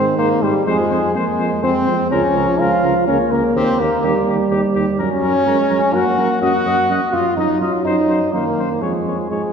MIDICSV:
0, 0, Header, 1, 6, 480
1, 0, Start_track
1, 0, Tempo, 480384
1, 663, Time_signature, 3, 2, 24, 8
1, 9518, End_track
2, 0, Start_track
2, 0, Title_t, "Flugelhorn"
2, 0, Program_c, 0, 56
2, 0, Note_on_c, 0, 72, 76
2, 175, Note_off_c, 0, 72, 0
2, 182, Note_on_c, 0, 70, 67
2, 428, Note_on_c, 0, 67, 64
2, 443, Note_off_c, 0, 70, 0
2, 654, Note_off_c, 0, 67, 0
2, 660, Note_on_c, 0, 68, 72
2, 1135, Note_off_c, 0, 68, 0
2, 1149, Note_on_c, 0, 68, 66
2, 1624, Note_on_c, 0, 72, 71
2, 1638, Note_off_c, 0, 68, 0
2, 2109, Note_on_c, 0, 73, 73
2, 2124, Note_off_c, 0, 72, 0
2, 2588, Note_on_c, 0, 77, 83
2, 2603, Note_off_c, 0, 73, 0
2, 3059, Note_off_c, 0, 77, 0
2, 3065, Note_on_c, 0, 73, 69
2, 3306, Note_on_c, 0, 70, 69
2, 3321, Note_off_c, 0, 73, 0
2, 3545, Note_off_c, 0, 70, 0
2, 3551, Note_on_c, 0, 72, 69
2, 3782, Note_on_c, 0, 70, 69
2, 3797, Note_off_c, 0, 72, 0
2, 4503, Note_off_c, 0, 70, 0
2, 4977, Note_on_c, 0, 73, 87
2, 5895, Note_off_c, 0, 73, 0
2, 5930, Note_on_c, 0, 78, 77
2, 6400, Note_off_c, 0, 78, 0
2, 6413, Note_on_c, 0, 78, 87
2, 7123, Note_on_c, 0, 77, 72
2, 7138, Note_off_c, 0, 78, 0
2, 7354, Note_on_c, 0, 75, 66
2, 7369, Note_off_c, 0, 77, 0
2, 7589, Note_off_c, 0, 75, 0
2, 7595, Note_on_c, 0, 77, 69
2, 7704, Note_off_c, 0, 77, 0
2, 7832, Note_on_c, 0, 75, 73
2, 8320, Note_on_c, 0, 70, 64
2, 8335, Note_off_c, 0, 75, 0
2, 8798, Note_off_c, 0, 70, 0
2, 8804, Note_on_c, 0, 68, 50
2, 9286, Note_off_c, 0, 68, 0
2, 9295, Note_on_c, 0, 68, 50
2, 9518, Note_off_c, 0, 68, 0
2, 9518, End_track
3, 0, Start_track
3, 0, Title_t, "Trumpet"
3, 0, Program_c, 1, 56
3, 184, Note_on_c, 1, 72, 62
3, 292, Note_off_c, 1, 72, 0
3, 435, Note_on_c, 1, 72, 53
3, 540, Note_off_c, 1, 72, 0
3, 667, Note_on_c, 1, 72, 63
3, 774, Note_off_c, 1, 72, 0
3, 908, Note_on_c, 1, 72, 50
3, 1016, Note_off_c, 1, 72, 0
3, 1151, Note_on_c, 1, 72, 56
3, 1259, Note_off_c, 1, 72, 0
3, 1395, Note_on_c, 1, 72, 55
3, 1501, Note_off_c, 1, 72, 0
3, 1630, Note_on_c, 1, 72, 57
3, 1737, Note_off_c, 1, 72, 0
3, 1864, Note_on_c, 1, 72, 51
3, 1973, Note_off_c, 1, 72, 0
3, 2111, Note_on_c, 1, 70, 62
3, 2218, Note_off_c, 1, 70, 0
3, 2360, Note_on_c, 1, 70, 54
3, 2466, Note_off_c, 1, 70, 0
3, 2604, Note_on_c, 1, 70, 62
3, 2709, Note_off_c, 1, 70, 0
3, 2841, Note_on_c, 1, 70, 54
3, 2947, Note_off_c, 1, 70, 0
3, 3077, Note_on_c, 1, 70, 53
3, 3183, Note_off_c, 1, 70, 0
3, 3328, Note_on_c, 1, 70, 52
3, 3432, Note_off_c, 1, 70, 0
3, 3564, Note_on_c, 1, 67, 58
3, 3669, Note_off_c, 1, 67, 0
3, 3798, Note_on_c, 1, 67, 53
3, 3904, Note_off_c, 1, 67, 0
3, 4032, Note_on_c, 1, 67, 62
3, 4139, Note_off_c, 1, 67, 0
3, 4267, Note_on_c, 1, 67, 51
3, 4375, Note_off_c, 1, 67, 0
3, 4503, Note_on_c, 1, 67, 60
3, 4611, Note_off_c, 1, 67, 0
3, 4743, Note_on_c, 1, 67, 57
3, 4851, Note_off_c, 1, 67, 0
3, 4981, Note_on_c, 1, 70, 54
3, 5089, Note_off_c, 1, 70, 0
3, 5220, Note_on_c, 1, 70, 56
3, 5328, Note_off_c, 1, 70, 0
3, 5464, Note_on_c, 1, 70, 62
3, 5571, Note_off_c, 1, 70, 0
3, 5696, Note_on_c, 1, 70, 54
3, 5804, Note_off_c, 1, 70, 0
3, 5939, Note_on_c, 1, 70, 58
3, 6046, Note_off_c, 1, 70, 0
3, 6177, Note_on_c, 1, 70, 51
3, 6284, Note_off_c, 1, 70, 0
3, 6416, Note_on_c, 1, 75, 56
3, 6522, Note_off_c, 1, 75, 0
3, 6660, Note_on_c, 1, 75, 52
3, 6765, Note_off_c, 1, 75, 0
3, 6900, Note_on_c, 1, 75, 55
3, 7005, Note_off_c, 1, 75, 0
3, 7139, Note_on_c, 1, 75, 51
3, 7244, Note_off_c, 1, 75, 0
3, 7384, Note_on_c, 1, 75, 54
3, 7488, Note_off_c, 1, 75, 0
3, 7617, Note_on_c, 1, 75, 50
3, 7721, Note_off_c, 1, 75, 0
3, 7850, Note_on_c, 1, 72, 55
3, 7955, Note_off_c, 1, 72, 0
3, 8086, Note_on_c, 1, 72, 46
3, 8193, Note_off_c, 1, 72, 0
3, 8334, Note_on_c, 1, 72, 49
3, 8440, Note_off_c, 1, 72, 0
3, 8581, Note_on_c, 1, 72, 48
3, 8686, Note_off_c, 1, 72, 0
3, 8813, Note_on_c, 1, 73, 46
3, 8921, Note_off_c, 1, 73, 0
3, 9063, Note_on_c, 1, 73, 39
3, 9171, Note_off_c, 1, 73, 0
3, 9306, Note_on_c, 1, 73, 43
3, 9415, Note_off_c, 1, 73, 0
3, 9518, End_track
4, 0, Start_track
4, 0, Title_t, "French horn"
4, 0, Program_c, 2, 60
4, 0, Note_on_c, 2, 60, 91
4, 180, Note_off_c, 2, 60, 0
4, 186, Note_on_c, 2, 58, 87
4, 427, Note_on_c, 2, 55, 79
4, 442, Note_off_c, 2, 58, 0
4, 657, Note_off_c, 2, 55, 0
4, 663, Note_on_c, 2, 56, 87
4, 1136, Note_off_c, 2, 56, 0
4, 1146, Note_on_c, 2, 56, 77
4, 1617, Note_off_c, 2, 56, 0
4, 1635, Note_on_c, 2, 60, 94
4, 2101, Note_off_c, 2, 60, 0
4, 2117, Note_on_c, 2, 61, 91
4, 2598, Note_on_c, 2, 65, 96
4, 2613, Note_off_c, 2, 61, 0
4, 3069, Note_off_c, 2, 65, 0
4, 3075, Note_on_c, 2, 61, 83
4, 3182, Note_off_c, 2, 61, 0
4, 3307, Note_on_c, 2, 58, 75
4, 3543, Note_off_c, 2, 58, 0
4, 3558, Note_on_c, 2, 60, 97
4, 3799, Note_on_c, 2, 58, 79
4, 3814, Note_off_c, 2, 60, 0
4, 4512, Note_off_c, 2, 58, 0
4, 4988, Note_on_c, 2, 61, 104
4, 5934, Note_on_c, 2, 66, 104
4, 5949, Note_off_c, 2, 61, 0
4, 6411, Note_off_c, 2, 66, 0
4, 6415, Note_on_c, 2, 66, 103
4, 7113, Note_off_c, 2, 66, 0
4, 7125, Note_on_c, 2, 65, 85
4, 7356, Note_off_c, 2, 65, 0
4, 7362, Note_on_c, 2, 63, 82
4, 7598, Note_off_c, 2, 63, 0
4, 7605, Note_on_c, 2, 65, 76
4, 7835, Note_off_c, 2, 65, 0
4, 7841, Note_on_c, 2, 63, 83
4, 8312, Note_off_c, 2, 63, 0
4, 8328, Note_on_c, 2, 58, 77
4, 8813, Note_on_c, 2, 56, 63
4, 8828, Note_off_c, 2, 58, 0
4, 9295, Note_off_c, 2, 56, 0
4, 9301, Note_on_c, 2, 56, 68
4, 9518, Note_off_c, 2, 56, 0
4, 9518, End_track
5, 0, Start_track
5, 0, Title_t, "Euphonium"
5, 0, Program_c, 3, 58
5, 0, Note_on_c, 3, 51, 82
5, 625, Note_off_c, 3, 51, 0
5, 667, Note_on_c, 3, 53, 73
5, 1152, Note_on_c, 3, 58, 70
5, 1167, Note_off_c, 3, 53, 0
5, 1629, Note_on_c, 3, 56, 63
5, 1644, Note_off_c, 3, 58, 0
5, 2110, Note_on_c, 3, 53, 80
5, 2125, Note_off_c, 3, 56, 0
5, 3067, Note_on_c, 3, 58, 79
5, 3082, Note_off_c, 3, 53, 0
5, 4027, Note_off_c, 3, 58, 0
5, 4032, Note_on_c, 3, 55, 74
5, 4967, Note_off_c, 3, 55, 0
5, 4992, Note_on_c, 3, 54, 71
5, 5456, Note_off_c, 3, 54, 0
5, 5462, Note_on_c, 3, 56, 69
5, 5929, Note_on_c, 3, 58, 77
5, 5944, Note_off_c, 3, 56, 0
5, 7084, Note_off_c, 3, 58, 0
5, 7361, Note_on_c, 3, 54, 71
5, 8316, Note_on_c, 3, 51, 53
5, 8331, Note_off_c, 3, 54, 0
5, 8801, Note_on_c, 3, 53, 56
5, 8816, Note_off_c, 3, 51, 0
5, 9288, Note_off_c, 3, 53, 0
5, 9294, Note_on_c, 3, 53, 54
5, 9518, Note_off_c, 3, 53, 0
5, 9518, End_track
6, 0, Start_track
6, 0, Title_t, "Tuba"
6, 0, Program_c, 4, 58
6, 177, Note_on_c, 4, 44, 61
6, 287, Note_off_c, 4, 44, 0
6, 419, Note_on_c, 4, 44, 57
6, 528, Note_off_c, 4, 44, 0
6, 657, Note_on_c, 4, 41, 60
6, 767, Note_off_c, 4, 41, 0
6, 901, Note_on_c, 4, 41, 65
6, 1011, Note_off_c, 4, 41, 0
6, 1142, Note_on_c, 4, 41, 60
6, 1252, Note_off_c, 4, 41, 0
6, 1385, Note_on_c, 4, 41, 57
6, 1493, Note_off_c, 4, 41, 0
6, 1626, Note_on_c, 4, 41, 61
6, 1734, Note_off_c, 4, 41, 0
6, 1869, Note_on_c, 4, 41, 61
6, 1977, Note_off_c, 4, 41, 0
6, 2108, Note_on_c, 4, 37, 64
6, 2216, Note_off_c, 4, 37, 0
6, 2350, Note_on_c, 4, 37, 61
6, 2458, Note_off_c, 4, 37, 0
6, 2589, Note_on_c, 4, 37, 61
6, 2697, Note_off_c, 4, 37, 0
6, 2828, Note_on_c, 4, 37, 57
6, 2937, Note_off_c, 4, 37, 0
6, 3072, Note_on_c, 4, 37, 60
6, 3179, Note_off_c, 4, 37, 0
6, 3308, Note_on_c, 4, 37, 61
6, 3416, Note_off_c, 4, 37, 0
6, 3548, Note_on_c, 4, 39, 65
6, 3656, Note_off_c, 4, 39, 0
6, 3789, Note_on_c, 4, 39, 64
6, 3897, Note_off_c, 4, 39, 0
6, 4024, Note_on_c, 4, 39, 64
6, 4133, Note_off_c, 4, 39, 0
6, 4263, Note_on_c, 4, 39, 58
6, 4371, Note_off_c, 4, 39, 0
6, 4503, Note_on_c, 4, 39, 66
6, 4611, Note_off_c, 4, 39, 0
6, 4746, Note_on_c, 4, 39, 65
6, 4853, Note_off_c, 4, 39, 0
6, 4984, Note_on_c, 4, 42, 66
6, 5092, Note_off_c, 4, 42, 0
6, 5221, Note_on_c, 4, 42, 62
6, 5329, Note_off_c, 4, 42, 0
6, 5459, Note_on_c, 4, 42, 65
6, 5567, Note_off_c, 4, 42, 0
6, 5696, Note_on_c, 4, 42, 57
6, 5804, Note_off_c, 4, 42, 0
6, 5931, Note_on_c, 4, 42, 60
6, 6040, Note_off_c, 4, 42, 0
6, 6168, Note_on_c, 4, 42, 62
6, 6277, Note_off_c, 4, 42, 0
6, 6409, Note_on_c, 4, 42, 63
6, 6516, Note_off_c, 4, 42, 0
6, 6649, Note_on_c, 4, 42, 62
6, 6756, Note_off_c, 4, 42, 0
6, 6888, Note_on_c, 4, 42, 61
6, 6995, Note_off_c, 4, 42, 0
6, 7123, Note_on_c, 4, 42, 60
6, 7232, Note_off_c, 4, 42, 0
6, 7363, Note_on_c, 4, 42, 58
6, 7471, Note_off_c, 4, 42, 0
6, 7599, Note_on_c, 4, 42, 52
6, 7708, Note_off_c, 4, 42, 0
6, 7839, Note_on_c, 4, 42, 59
6, 7947, Note_off_c, 4, 42, 0
6, 8082, Note_on_c, 4, 42, 55
6, 8190, Note_off_c, 4, 42, 0
6, 8327, Note_on_c, 4, 42, 52
6, 8434, Note_off_c, 4, 42, 0
6, 8566, Note_on_c, 4, 42, 46
6, 8674, Note_off_c, 4, 42, 0
6, 8810, Note_on_c, 4, 41, 49
6, 8919, Note_off_c, 4, 41, 0
6, 9055, Note_on_c, 4, 41, 47
6, 9165, Note_off_c, 4, 41, 0
6, 9298, Note_on_c, 4, 44, 45
6, 9409, Note_off_c, 4, 44, 0
6, 9518, End_track
0, 0, End_of_file